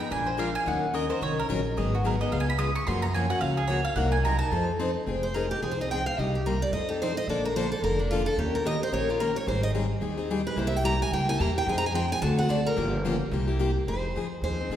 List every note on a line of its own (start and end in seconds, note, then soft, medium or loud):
0.00 0.11 B3 soft
0.00 0.11 D#4 medium
0.00 0.11 G#4 medium
0.00 0.11 G5 loud
0.10 0.55 A#1 medium
0.10 0.29 F3 medium
0.10 0.30 G#3 medium
0.10 0.30 D4 medium
0.10 0.30 F4 medium
0.10 0.30 A#4 medium
0.10 0.27 G#5 loud
0.26 0.38 C5 medium
0.37 0.49 F3 medium
0.37 0.49 G#3 medium
0.37 0.49 D4 medium
0.37 0.50 F4 medium
0.37 0.49 A#4 loud
0.37 0.55 F5 medium
0.55 0.67 G#5 loud
0.66 1.10 D#2 medium
0.66 0.85 D#3 medium
0.66 0.85 F#3 medium
0.66 0.85 C#4 medium
0.66 0.85 D#4 medium
0.66 0.86 A#4 medium
0.66 0.93 F#5 medium
0.94 1.04 D#3 medium
0.94 1.04 F#3 medium
0.94 1.05 C#4 medium
0.94 1.05 D#4 medium
0.94 1.05 A#4 medium
0.94 1.10 D#5 medium
1.10 1.21 C#4 soft
1.10 1.22 D#4 medium
1.10 1.21 A#4 medium
1.10 1.21 C5 medium
1.21 1.45 C2 medium
1.21 1.40 D#3 medium
1.21 1.40 F#3 medium
1.21 1.40 C#4 medium
1.21 1.41 D#4 medium
1.21 1.41 A#4 medium
1.21 1.38 C#5 medium
1.40 1.46 A#4 loud
1.49 1.73 A#1 medium
1.49 1.59 D#3 loud
1.49 1.60 F#3 medium
1.49 1.60 C#4 loud
1.49 1.60 D#4 medium
1.49 1.60 A#4 loud
1.77 2.21 G#1 loud
1.77 1.96 D#3 medium
1.77 1.96 F#3 medium
1.77 1.96 B3 medium
1.77 1.96 D#4 medium
1.77 1.96 G#4 medium
1.77 1.93 D#5 medium
1.95 2.05 F#4 medium
2.04 2.15 D#3 medium
2.04 2.15 F#3 medium
2.04 2.15 B3 loud
2.04 2.15 D#4 loud
2.04 2.15 G#4 medium
2.04 2.20 A#4 medium
2.21 2.31 B3 medium
2.21 2.32 D#4 medium
2.21 2.32 G#4 medium
2.21 2.32 D#5 medium
2.32 2.76 C#2 loud
2.32 2.50 C#3 medium
2.32 2.51 G#3 medium
2.32 2.51 B3 medium
2.32 2.51 F4 medium
2.32 2.51 G#4 medium
2.32 2.40 F5 medium
2.40 2.49 G#5 loud
2.50 2.58 B5 loud
2.59 2.70 C#3 loud
2.59 2.69 G#3 loud
2.59 2.70 B3 loud
2.59 2.70 F4 medium
2.59 2.70 G#4 loud
2.59 2.74 D#6 loud
2.75 2.86 C#6 loud
2.87 3.31 F#2 loud
2.87 3.06 C#3 medium
2.87 3.06 F3 medium
2.87 3.06 A#3 medium
2.87 3.06 C#4 medium
2.87 3.06 F#4 medium
2.87 3.02 C6 medium
3.02 3.14 A#5 loud
3.14 3.25 C#3 loud
3.14 3.25 F3 medium
3.14 3.25 A#3 loud
3.14 3.25 C#4 loud
3.14 3.26 F#4 loud
3.14 3.30 G#5 medium
3.30 3.40 A#3 medium
3.30 3.41 C#4 medium
3.30 3.41 F#4 medium
3.30 3.40 F#5 loud
3.41 3.86 C#2 medium
3.41 3.60 C#3 medium
3.41 3.60 F3 medium
3.41 3.60 A#3 medium
3.41 3.61 C#4 medium
3.41 3.61 F#4 medium
3.41 3.57 F5 loud
3.57 3.69 G#4 medium
3.68 3.80 C#3 medium
3.68 3.80 F3 loud
3.68 3.80 A#3 loud
3.68 3.80 C#4 loud
3.68 3.80 F#4 loud
3.68 3.84 C#5 medium
3.85 3.95 F5 loud
3.96 4.40 C2 loud
3.96 4.16 C3 medium
3.96 4.16 F#3 medium
3.96 4.16 A#3 medium
3.96 4.16 D#4 medium
3.96 4.16 A#4 medium
3.96 4.12 F#5 loud
4.12 4.24 G#5 loud
4.25 4.35 C3 medium
4.25 4.35 F#3 medium
4.25 4.35 A#3 loud
4.25 4.36 D#4 loud
4.25 4.36 A#4 loud
4.25 4.38 A#5 loud
4.39 4.52 A#3 medium
4.39 4.51 D#4 medium
4.39 4.52 A#4 medium
4.39 4.65 A5 loud
4.51 4.96 F2 loud
4.51 4.70 F3 medium
4.51 4.71 C4 medium
4.51 4.71 D#4 medium
4.51 4.71 A4 medium
4.79 4.90 F3 loud
4.79 4.90 C4 loud
4.79 4.90 D#4 loud
4.79 4.90 A4 loud
5.06 5.51 F1 medium
5.06 5.26 F3 medium
5.06 5.26 C4 medium
5.06 5.26 D#4 medium
5.06 5.26 G#4 medium
5.23 5.34 C5 medium
5.34 5.45 F3 medium
5.34 5.45 C4 medium
5.34 5.46 D#4 medium
5.34 5.46 G#4 medium
5.34 5.50 A#4 medium
5.51 5.62 G4 medium
5.62 6.06 C2 medium
5.62 5.78 F3 medium
5.62 5.78 C4 medium
5.62 5.78 D#4 medium
5.62 5.71 G#4 medium
5.62 5.78 G#4 medium
5.71 5.80 C5 medium
5.79 5.91 C4 soft
5.79 5.90 D#4 medium
5.79 5.90 G#4 medium
5.79 5.90 D#5 medium
5.91 6.01 F3 medium
5.91 6.02 C4 medium
5.91 6.02 D#4 loud
5.91 6.02 G#4 loud
5.91 6.06 G5 loud
6.06 6.19 F5 medium
6.18 6.62 C2 medium
6.18 6.36 C3 medium
6.18 6.37 G3 medium
6.18 6.37 A#3 medium
6.18 6.37 D#4 medium
6.18 6.37 G4 medium
6.18 6.34 D#5 medium
6.35 6.46 G4 soft
6.46 6.56 C3 medium
6.46 6.56 G3 loud
6.46 6.56 A#3 medium
6.46 6.56 D#4 medium
6.46 6.56 G4 loud
6.46 6.61 A#4 medium
6.62 6.72 D5 loud
6.72 7.16 F2 medium
6.72 6.88 F3 medium
6.72 6.89 C4 medium
6.72 6.89 D#4 medium
6.72 6.89 A4 medium
6.72 6.88 D#5 medium
6.89 7.01 C4 soft
6.89 7.01 D#4 medium
6.89 7.00 G4 medium
6.89 7.00 A4 medium
7.02 7.12 F3 medium
7.02 7.12 C4 medium
7.02 7.12 D#4 loud
7.02 7.12 A4 medium
7.02 7.16 C5 medium
7.17 7.28 D#5 loud
7.27 7.71 A#1 medium
7.27 7.47 D3 medium
7.27 7.47 F3 medium
7.27 7.47 A#3 medium
7.27 7.47 D4 medium
7.27 7.47 A4 medium
7.27 7.44 D5 medium
7.45 7.56 A#4 medium
7.56 7.66 D3 medium
7.56 7.66 F3 medium
7.56 7.66 A#3 loud
7.56 7.66 D4 medium
7.56 7.67 A4 loud
7.56 7.71 C5 loud
7.72 7.83 A4 medium
7.82 8.26 F1 medium
7.82 7.98 D3 medium
7.82 7.99 F3 medium
7.82 7.98 A#3 medium
7.82 7.99 D4 medium
7.82 7.98 A4 medium
7.82 7.98 A#4 loud
7.99 8.11 A#3 soft
7.99 8.10 D4 medium
7.99 8.10 A4 medium
8.11 8.21 D3 medium
8.11 8.21 F3 loud
8.11 8.22 A#3 medium
8.11 8.22 D4 medium
8.11 8.26 F4 medium
8.11 8.22 A4 loud
8.26 8.37 A4 loud
8.36 8.81 D#2 medium
8.36 8.57 D#3 medium
8.36 8.57 A#3 medium
8.36 8.57 C#4 medium
8.36 8.54 G4 medium
8.36 8.57 G4 medium
8.36 8.57 A#4 medium
8.55 8.66 A#4 medium
8.65 8.76 D#3 medium
8.65 8.76 A#3 medium
8.65 8.76 C#4 medium
8.65 8.76 G4 medium
8.65 8.76 A#4 medium
8.65 8.81 D#5 medium
8.83 8.93 C5 medium
8.92 9.36 A#1 medium
8.92 9.08 D#3 medium
8.92 9.08 A#3 medium
8.92 9.08 C#4 medium
8.92 9.08 G4 medium
8.92 9.07 A#4 medium
8.92 9.08 C#5 medium
9.09 9.20 C#4 soft
9.09 9.21 F4 medium
9.09 9.20 G4 medium
9.09 9.20 A#4 medium
9.20 9.30 D#3 medium
9.20 9.30 A#3 medium
9.20 9.31 C#4 medium
9.20 9.31 G4 loud
9.20 9.36 A#4 medium
9.20 9.31 A#4 loud
9.36 9.47 C#5 medium
9.47 9.91 G#1 medium
9.47 9.66 D#3 medium
9.47 9.66 G3 medium
9.47 9.66 C4 medium
9.47 9.66 D#4 medium
9.47 9.66 G#4 medium
9.47 9.63 C5 medium
9.63 9.70 D#5 loud
9.75 9.85 D#3 medium
9.75 9.85 G3 medium
9.75 9.85 C4 medium
9.75 9.85 D#4 medium
9.75 9.86 G#4 loud
10.01 10.46 D#2 medium
10.01 10.17 D#3 medium
10.01 10.17 G3 medium
10.01 10.18 C4 medium
10.01 10.17 D#4 medium
10.01 10.16 G#4 medium
10.17 10.30 C4 medium
10.17 10.30 D#4 medium
10.17 10.29 G#4 medium
10.30 10.41 D#3 medium
10.30 10.41 G3 loud
10.30 10.41 C4 medium
10.30 10.41 D#4 loud
10.30 10.41 G#4 loud
10.47 10.58 B4 medium
10.56 11.01 C2 loud
10.56 10.75 C3 medium
10.56 10.76 G3 medium
10.56 10.76 A#3 medium
10.56 10.76 E4 medium
10.56 10.76 G4 medium
10.56 10.67 C5 medium
10.67 10.76 E5 medium
10.76 10.85 G5 medium
10.83 10.95 C3 loud
10.83 10.95 G3 medium
10.83 10.95 A#3 medium
10.83 10.95 E4 loud
10.83 10.95 G4 medium
10.83 11.00 A#5 loud
11.02 11.13 G#5 loud
11.11 11.35 C#2 medium
11.11 11.28 C3 medium
11.11 11.28 G3 medium
11.11 11.28 A#3 medium
11.11 11.28 E4 medium
11.11 11.27 G4 medium
11.11 11.28 G5 medium
11.28 11.39 A#3 soft
11.28 11.39 E4 medium
11.28 11.40 G4 medium
11.28 11.41 G#5 loud
11.40 11.63 E2 medium
11.40 11.50 C3 loud
11.40 11.50 G3 medium
11.40 11.50 A#3 loud
11.40 11.51 E4 loud
11.40 11.51 G4 loud
11.40 11.56 A#5 loud
11.58 11.68 G5 loud
11.66 12.11 F2 loud
11.66 11.86 F3 medium
11.66 11.86 C4 medium
11.66 11.87 D#4 medium
11.66 11.87 G#4 loud
11.66 11.77 G#5 medium
11.78 11.86 A#5 loud
11.86 11.95 G#5 medium
11.94 12.05 F3 loud
11.94 12.05 C4 loud
11.94 12.06 D#4 loud
11.94 12.06 G#4 loud
11.94 12.10 G5 loud
12.12 12.21 G#5 loud
12.22 12.66 D2 loud
12.22 12.38 D3 medium
12.22 12.38 A3 medium
12.22 12.38 C4 medium
12.22 12.38 F#4 medium
12.22 12.38 A4 medium
12.22 12.37 A5 loud
12.38 12.48 C4 soft
12.38 12.48 F#4 medium
12.38 12.48 A4 medium
12.38 12.50 F#5 loud
12.49 12.60 D3 loud
12.49 12.60 A3 loud
12.49 12.60 C4 loud
12.49 12.60 F#4 loud
12.49 12.60 A4 loud
12.49 12.65 D5 medium
12.67 13.03 A#4 medium
12.76 13.21 G1 loud
12.76 12.96 C#3 medium
12.76 12.96 F3 medium
12.76 12.96 A#3 medium
12.76 12.96 F4 medium
12.76 12.96 G4 medium
13.05 13.15 C#3 medium
13.05 13.15 F3 loud
13.05 13.16 A#3 loud
13.05 13.15 F4 loud
13.05 13.16 G4 loud
13.31 13.76 C2 loud
13.31 13.48 C3 medium
13.31 13.48 G3 medium
13.31 13.48 A#3 medium
13.31 13.47 E4 medium
13.31 13.46 G4 medium
13.48 13.59 A#3 medium
13.48 13.60 E4 medium
13.48 13.59 G4 medium
13.59 13.70 C3 loud
13.59 13.70 G3 loud
13.59 13.70 A#3 loud
13.59 13.71 E4 loud
13.59 13.71 G4 loud
13.87 14.14 F1 medium
13.87 14.06 F3 medium
13.87 14.06 C4 medium
13.87 14.07 D#4 medium
13.87 14.07 G#4 medium
13.87 14.42 C5 medium
14.15 14.41 F2 medium
14.15 14.26 F3 medium
14.15 14.26 C4 medium
14.15 14.26 D#4 medium
14.15 14.27 G#4 medium
14.42 14.69 D#2 medium
14.42 14.59 F3 medium
14.42 14.59 C4 medium
14.42 14.59 D#4 medium
14.42 14.58 G#4 medium
14.42 14.76 C5 medium
14.59 14.70 C4 soft
14.59 14.71 D#4 soft
14.59 14.70 G#4 medium
14.69 14.76 A#2 medium
14.69 14.76 F3 medium
14.69 14.76 C4 medium
14.69 14.76 D#4 medium
14.69 14.76 G#4 medium